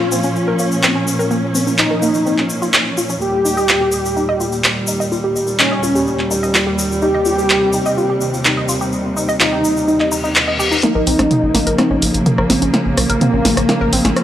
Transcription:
Already playing: string section A#2 F3 C#4, supersaw synth F4
0.12 synth arpeggio sound C4, shaker
0.23 synth arpeggio sound C#4, shaker
0.36 shaker
0.48 synth arpeggio sound A#4
0.59 synth arpeggio sound A#3, shaker
0.72 shaker
0.83 synth arpeggio sound C4, clap, shaker
0.95 synth arpeggio sound C#4
1.07 shaker
1.19 synth arpeggio sound A#4, shaker
1.31 synth arpeggio sound A#3, shaker
1.55 synth arpeggio sound C4, shaker
1.67 synth arpeggio sound C#4, shaker
1.78 supersaw synth D#4, clap, shaker
1.91 synth arpeggio sound A#4
2.02 synth arpeggio sound A#3, shaker
2.14 shaker
2.26 synth arpeggio sound C4, shaker
2.38 synth arpeggio sound C#4, clap
2.50 shaker
2.62 synth arpeggio sound F4, shaker
2.73 synth arpeggio sound C#5, clap, shaker
2.97 synth arpeggio sound F4, shaker
3.09 synth arpeggio sound C#4, shaker
3.21 string section D#2 G3, supersaw synth G4, shaker
3.45 synth arpeggio sound D#4, shaker
3.57 synth arpeggio sound D#5, shaker
3.68 synth arpeggio sound F4, clap, shaker
3.81 synth arpeggio sound G4
3.92 shaker
4.05 shaker
4.17 synth arpeggio sound D#4, shaker
4.29 synth arpeggio sound D#5
4.40 synth arpeggio sound F4, shaker
4.52 synth arpeggio sound G4, shaker
4.64 clap, shaker
4.87 synth arpeggio sound D#4, shaker
5.00 synth arpeggio sound D#5, shaker
5.12 synth arpeggio sound F4, shaker
5.24 synth arpeggio sound G4
5.36 shaker
5.47 shaker
5.59 supersaw synth C#4, synth arpeggio sound D#4, clap, shaker
5.72 synth arpeggio sound D#5
5.83 synth arpeggio sound F4, shaker
5.95 synth arpeggio sound G4, shaker
6.07 shaker
6.19 clap
6.31 synth arpeggio sound D#4, shaker
6.43 synth arpeggio sound D#5, shaker
6.54 synth arpeggio sound F4, clap, shaker
6.67 synth arpeggio sound G4
6.79 shaker
6.92 shaker
7.02 string section C3, synth arpeggio sound D#4, supersaw synth G4, shaker
7.14 synth arpeggio sound D#5
7.25 synth arpeggio sound F4, shaker
7.38 synth arpeggio sound G4, shaker
7.50 clap, shaker
7.73 synth arpeggio sound D#4, shaker
7.86 synth arpeggio sound D#5, shaker
7.98 synth arpeggio sound F4, shaker
8.10 synth arpeggio sound G4
8.21 shaker
8.34 shaker
8.44 synth arpeggio sound D#4, clap, shaker
8.57 synth arpeggio sound D#5
8.69 synth arpeggio sound F4, shaker
8.81 synth arpeggio sound G4, shaker
8.92 shaker
9.17 synth arpeggio sound D#4, shaker
9.29 synth arpeggio sound D#5, shaker
9.40 supersaw synth D#4, synth arpeggio sound F4, clap, shaker
9.53 synth arpeggio sound G4
9.64 shaker
9.77 shaker
9.88 synth arpeggio sound D#4, reverse cymbal, shaker
10.00 synth arpeggio sound D#5, clap
10.12 synth arpeggio sound D#4, shaker
10.24 synth arpeggio sound D#4, shaker
10.35 clap, shaker
10.48 synth arpeggio sound D#5
10.59 synth arpeggio sound G4, shaker
10.72 synth arpeggio sound D#4, shaker
10.83 string section C#3 F3 A#3, synth arpeggio sound A#3, supersaw synth D#4, snare, closed hi-hat, riser
10.95 analog synth bass A#1, synth arpeggio sound A#4
11.07 analog synth bass C2, synth arpeggio sound C4, open hi-hat
11.19 analog synth bass A#1, synth arpeggio sound C#4, cross-stick, snare, closed hi-hat
11.31 closed hi-hat, mid tom
11.43 analog synth bass A#1
11.55 analog synth bass A#1, synth arpeggio sound A#3, snare, open hi-hat
11.67 analog synth bass A#1, synth arpeggio sound A#4, closed hi-hat
11.78 synth arpeggio sound C4, cross-stick, snare, closed hi-hat
11.91 analog synth bass A#1, synth arpeggio sound C#4
12.02 analog synth bass A#1, open hi-hat
12.14 analog synth bass A#1, closed hi-hat
12.26 synth arpeggio sound A#3, closed hi-hat, mid tom
12.38 analog synth bass A#1, synth arpeggio sound A#4, cross-stick
12.50 analog synth bass A#1, synth arpeggio sound C4, snare, open hi-hat
12.62 analog synth bass A#1, synth arpeggio sound C#4, closed hi-hat
12.74 snare, closed hi-hat
12.86 analog synth bass A#1
12.97 analog synth bass C2, synth arpeggio sound A#3, cross-stick, open hi-hat
13.10 analog synth bass A#1, synth arpeggio sound A#4, closed hi-hat
13.21 supersaw synth A#3, synth arpeggio sound C4, closed hi-hat, mid tom
13.33 analog synth bass A#1, synth arpeggio sound C#4
13.45 analog synth bass A#1, snare, open hi-hat
13.57 analog synth bass A#1, cross-stick, closed hi-hat
13.69 synth arpeggio sound A#3, snare, closed hi-hat
13.81 analog synth bass A#1, synth arpeggio sound A#4
13.93 analog synth bass A#1, synth arpeggio sound C4, open hi-hat
14.05 analog synth bass A#1, synth arpeggio sound C#4, snare, closed hi-hat
14.16 cross-stick, closed hi-hat

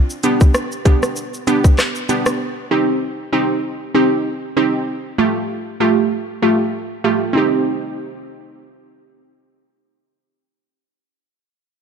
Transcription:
0.10 shaker
0.23 synth pluck B3 D4 G4, closed hi-hat, shaker
0.41 kick, shaker
0.54 cross-stick, shaker
0.72 shaker
0.85 synth pluck B3 D4 G4, kick, closed hi-hat, shaker
1.03 cross-stick, shaker
1.16 shaker
1.34 shaker
1.47 synth pluck B3 D4 G4, closed hi-hat, shaker
1.64 kick, shaker
1.79 cross-stick, clap, shaker
1.95 shaker
2.09 synth pluck B3 D4 G4, closed hi-hat, shaker
2.26 cross-stick, shaker
2.71 synth pluck C4 D#4 G4
3.33 synth pluck C4 D#4 G4
3.95 synth pluck C4 D#4 G4
4.57 synth pluck C4 D#4 G4
5.18 synth pluck A3 F4 G4
5.80 synth pluck A3 F4 G4
6.42 synth pluck A3 F4 G4
7.04 synth pluck A3 F4 G4
7.33 synth pluck C4 D#4
7.37 synth pluck G4

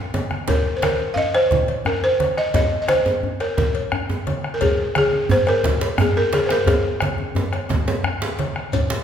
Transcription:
0.14 cowbell, djembe slap, djembe tone, high conga
0.31 bombo rim, high conga
0.48 balafon A#4, bombo rim, bombo low, cowbell, high conga, djembe tone, low conga, djembe bass
0.66 bombo rim, djembe slap
0.76 balafon C5
0.82 balafon A#4, bombo rim, cowbell, djembe slap, high conga
0.99 djembe tone, high conga
1.14 balafon D#5 F5, high conga, djembe bass
1.34 balafon C5, bombo rim, cowbell
1.51 bombo low, djembe slap, high conga, low conga
1.68 cowbell
1.85 balafon A#4, bombo rim, djembe bass
2.03 balafon C5, bombo rim, djembe slap, djembe tone
2.20 cowbell, djembe slap, high conga
2.37 balafon D#5, bombo rim
2.54 balafon D#5, bombo rim, bombo low, cowbell, djembe tone, high conga, djembe bass, low conga
2.72 bombo rim, djembe slap
2.82 balafon D#5
2.88 balafon C5, bombo rim, cowbell, djembe slap, high conga
3.06 high conga, djembe tone
3.23 djembe bass
3.40 balafon A#4, bombo rim, cowbell
3.58 balafon A#4, bombo low, djembe slap, high conga, djembe tone, low conga
3.75 cowbell
3.92 bombo rim, djembe bass
4.09 bombo rim, djembe slap, djembe tone
4.27 cowbell, djembe slap, high conga
4.44 bombo rim
4.54 balafon A#4
4.61 balafon G#4, bombo rim, bombo low, cowbell, high conga, djembe bass, low conga
4.79 bombo rim, djembe slap
4.95 balafon G#4, bombo rim, cowbell, djembe slap, high conga
5.13 djembe tone, high conga
5.29 balafon C5, djembe bass
5.47 balafon A#4, bombo rim, cowbell
5.64 bombo low, djembe slap, high conga, low conga
5.81 cowbell, djembe slap
5.98 balafon G#4, bombo rim, djembe bass
6.16 balafon A#4, bombo rim, djembe slap, djembe tone
6.33 balafon G#4, cowbell, djembe slap, high conga
6.46 balafon C5, bombo rim
6.50 balafon A#4, djembe slap
6.66 balafon G#4, bombo low, cowbell, djembe tone, djembe bass, low conga
6.84 bombo rim, djembe slap
7.00 bombo rim, cowbell, djembe slap, djembe tone, high conga
7.18 djembe tone
7.35 djembe tone, high conga, djembe bass
7.53 bombo rim, cowbell, djembe slap, high conga
7.69 bombo low, djembe slap, djembe tone, high conga, low conga
7.87 bombo rim, cowbell, djembe slap, djembe tone
8.04 bombo rim, djembe slap, djembe bass
8.22 bombo rim, djembe slap, djembe tone
8.39 cowbell, djembe slap, high conga
8.56 bombo rim, djembe slap
8.73 bombo rim, bombo low, cowbell, high conga, djembe bass, low conga, shekere
8.90 djembe slap

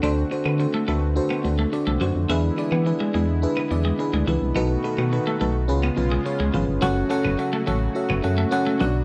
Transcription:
Already playing: analog synth pad C4 F#4
0.02 fm bass D2, fm electric piano D3 D4 F#4 A4 C5, analog synth pad D3 A3, clean electric guitar D4
0.31 fm electric piano D4 F#4 A4 C5, muted clean electric guitar stroke
0.46 fm bass D3, clean electric guitar B3
0.59 fm electric piano D4 F#4 A4 C5, muted clean electric guitar stroke
0.74 clean electric guitar A3
0.87 fm bass D2, clean electric guitar A3, fm electric piano D4 F#4 A4 B4
1.16 fm electric piano D4 F#4 A4 C5
1.31 clean electric guitar B3
1.44 fm bass D2, fm electric piano D4 F#4 A4 C5, muted clean electric guitar stroke
1.59 clean electric guitar A3
1.72 fm electric piano D4 F#4 A4 D5, muted clean electric guitar stroke
1.87 fm bass C2, clean electric guitar A3
2.01 fm bass F#2, clean electric guitar F#3, fm electric piano D4 F#4 A4 C5
2.15 fm bass F2
2.29 fm bass E2, fm electric piano E3 D4 E4 G#4 B4, analog synth pad G#3 B3 E4, clean electric guitar E4
2.57 fm electric piano D4 E4 G#4 D5, muted clean electric guitar stroke
2.72 fm bass E3, clean electric guitar B3
2.85 fm electric piano D4 E4 G#4 B4, muted clean electric guitar stroke
3.00 clean electric guitar G#3
3.14 fm bass E2, clean electric guitar G#3, fm electric piano D4 E4 G#4 B4
3.42 fm electric piano D4 E4 G#4 B4
3.57 clean electric guitar B3
3.70 fm bass E2, fm electric piano D4 E4 G#4 D5, muted clean electric guitar stroke
3.85 clean electric guitar G#3
3.99 fm electric piano D4 E4 G#4 B4, muted clean electric guitar stroke
4.13 fm bass D2, clean electric guitar G#3
4.27 fm bass C#2, clean electric guitar E3, fm electric piano D4 E4 G#4 B4
4.42 fm bass C2
4.55 fm bass B1, fm electric piano B2 D#4 F#4 A4 B4, analog synth pad D#3 A3 F#4, clean electric guitar B3
4.84 fm electric piano D#4 F#4 A4 B4, muted clean electric guitar stroke
4.98 fm bass B2, clean electric guitar B3
5.12 fm electric piano D#4 F#4 A4 B4, muted clean electric guitar stroke
5.27 clean electric guitar A3
5.40 fm bass B1, clean electric guitar A3, fm electric piano D#4 F#4 A4 B4
5.68 fm bass C#2, fm electric piano C#3 C#4 F4 G#4 B4, analog synth pad C#3 G#3 B3 F4
5.83 clean electric guitar B3
5.96 fm bass B1, fm electric piano C#4 F4 G#4 B4, muted clean electric guitar stroke
6.12 clean electric guitar G#3
6.25 fm electric piano C#4 F4 G#4 C#5, muted clean electric guitar stroke
6.40 fm bass C#2, clean electric guitar G#3
6.53 fm bass G#1, clean electric guitar F3, fm electric piano C#4 F4 G#4 B4
6.68 fm bass G1
6.81 fm bass F#1, analog synth pad C#3 F#3 A3 F#4, clean electric guitar F#3, fm electric piano C#4 F#4 A4 C#5 F#5
7.10 fm electric piano C#4 F#4 A4 C#5 F#5, muted clean electric guitar stroke
7.25 fm bass F#1, clean electric guitar B3
7.38 fm electric piano C#4 F#4 A4 C#5 F#5, muted clean electric guitar stroke
7.53 clean electric guitar A3
7.66 fm bass A1, clean electric guitar A3, fm electric piano C#4 F#4 A4 C#5 F#5
7.95 fm electric piano C#4 F#4 A4 C#5 E5
8.10 fm bass F#1, clean electric guitar B3
8.23 fm bass F#2, fm electric piano C#4 F#4 A4 C#5 F#5, muted clean electric guitar stroke
8.38 clean electric guitar A3
8.51 fm electric piano C#4 F#4 A4 C#5 F#5, muted clean electric guitar stroke
8.67 clean electric guitar A3
8.80 fm bass B1, fm electric piano B2 D4 F#4 B4 D5 F#5, analog synth pad D3 B3, clean electric guitar F#3

